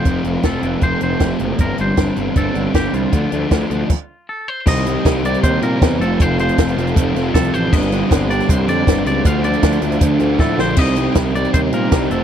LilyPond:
<<
  \new Staff \with { instrumentName = "Clean electric guitar" } { \time 4/4 \key c \dorian \tempo 4 = 157 c''8 r8 a'4 c''8 c''4 r8 | bes'8 c''4. a'4 g'8 f'8~ | f'2. a'8 c''8 | ees''4. d''8 c''8 bes'4 a'8 |
c''8 c''4. r4 a'8 c''8 | ees''4. d''8 c''8 d''4 d''8 | f''8 d''4. r4 a'8 c''8 | ees''4. d''8 c''8 bes'4 a'8 | }
  \new Staff \with { instrumentName = "Analog synth pad" } { \time 4/4 \key c \dorian << { r1 | r1 | r1 | <ees' g' g''>2.~ <ees' g' g''>8 <f' a' a''>8~ |
<f' a' a''>1 | <d g' g''>1 | <d' a' f''>1 | <ees' g' g''>2.~ <ees' g' g''>8 <f' a' a''>8 | } \\ { r1 | r1 | r1 | c''2.~ c''8 c''8~ |
c''1~ | c''1 | c''1~ | c''1 | } >> }
  \new Staff \with { instrumentName = "Overdriven electric guitar" } { \clef bass \time 4/4 \key c \dorian f8 f8 c'8 f8 a8 c'8 a8 f8 | g,8 g8 d'8 g8 c'8 d'8 c'8 g8 | d8 f8 d'8 f8 r2 | <c ees g c' g'>8 <c ees g c' g'>8 <c ees g c' g'>8 <c ees g c' g'>8 <c ees g c' g'>8 <c ees g c' g'>8 <c ees g c' g'>8 <f a c' f'>8 |
<f a c' f'>8 <f a c' f'>8 <f a c' f'>8 <f a c' f'>8 <f a c' f'>8 <f a c' f'>8 <f a c' f'>8 <f a c' f'>8 | <g, d g c' d'>8 <g, d g c' d'>8 <g, d g c' d'>8 <g, d g c' d'>8 <g, d g c' d'>8 <g, d g c' d'>8 <g, d g c' d'>8 <g, d g c' d'>8 | <d f a d'>8 <d f a d'>8 <d f a d'>8 <d f a d'>8 <d f a d'>8 <d f a d'>8 <d f a d'>8 <d f a d'>8 | <c g c' ees'>8 <c g c' ees'>8 <c g c' ees'>8 <c g c' ees'>8 <c g c' ees'>8 <c g c' ees'>8 <c g c' ees'>8 <f, c f a c'>8 | }
  \new Staff \with { instrumentName = "Overdriven electric guitar" } { \clef bass \time 4/4 \key c \dorian <f, c f a c'>8 <f a c'>8 <c f a c'>8 <f a c'>8 <f, c f a c'>8 <f a c'>8 <c f a c'>4 | <g, d g c' d'>8 <g c' d'>8 <d g c' d'>8 <g c' d'>8 <g, d g c' d'>8 <g c' d'>8 <d g c' d'>4 | <d f a d'>8 <f a d'>8 <d f a d'>8 <f a d'>8 r2 | <c g c' ees'>8 <c g c' ees'>8 <c g c' ees'>8 <c g c' ees'>8 <c g c' ees'>8 <c g c' ees'>8 <c g c' ees'>8 <f, c f a c'>8 |
<f, c f a c'>8 <f, c f a c'>8 <f, c f a c'>8 <f, c f a c'>8 <f, c f a c'>8 <f, c f a c'>8 <f, c f a c'>8 <f, c f a c'>8 | <g, d g c' d'>8 <g, d g c' d'>8 <g, d g c' d'>8 <g, d g c' d'>8 <g, d g c' d'>8 <g, d g c' d'>8 <g, d g c' d'>8 <g, d g c' d'>8 | <d f a d'>8 <d f a d'>8 <d f a d'>8 <d f a d'>8 <d f a d'>8 <d f a d'>8 <d f a d'>8 <d f a d'>8 | <c g c' ees'>8 <c g c' ees'>8 <c g c' ees'>8 <c g c' ees'>8 <c g c' ees'>8 <c g c' ees'>8 <c g c' ees'>8 <f, c f a c'>8 | }
  \new Staff \with { instrumentName = "Picked electric bass" } { \clef bass \time 4/4 \key c \dorian f,,8 f,,8 f,,8 f,,8 f,,8 f,,8 f,,8 fis,,8 | g,,8 g,,8 g,,8 g,,8 g,,8 g,,8 g,,8 c,8 | d,8 d,8 d,8 d,8 r2 | c,4 c,4 ees,8 bes,8 e,8 f,,8 |
f,,4 f,,8 f,,8 f,,8 f,,8 c,8 a,,8 | g,,4 g,,4 c,8 f,8 g,,8 des,8 | d,4 d,8 d,8 d,8 d,8 a,8 bes,,8 | c,4 c,4 ees,8 bes,8 c,8 f,,8 | }
  \new DrumStaff \with { instrumentName = "Drums" } \drummode { \time 4/4 <hh bd>8 hh8 <hh bd sn>8 hh8 <hh bd>8 hh8 <hh bd sn>8 hh8 | <hh bd>8 hh8 <hh bd sn>8 hh8 <hh bd>8 hh8 <hh bd sn>8 hh8 | <hh bd>8 hh8 <hh bd sn>8 hh8 <cymc bd>4 r4 | <cymc bd>16 hh16 hh8 <hh bd sn>8 hh16 hh16 <hh bd>8 hh8 <hh bd sn>8 hh8 |
<hh bd>8 hh16 hh16 <hh bd sn>16 hh16 hh16 hh16 <hh bd>8 <hh sn>8 <hh bd sn>16 hh16 hh8 | <cymc bd>16 hh16 hh8 <hh bd sn>8 hh16 <hh sn>16 <hh bd>8 hh8 <hh bd sn>8 hh8 | <hh bd>8 hh16 hh16 <hh bd sn>16 hh16 hh16 hh16 <hh bd>8 hh8 <bd sn>8 sn8 | <cymc bd>16 hh16 hh8 <hh bd sn>8 hh16 hh16 <hh bd>8 hh8 <hh bd sn>8 hh8 | }
>>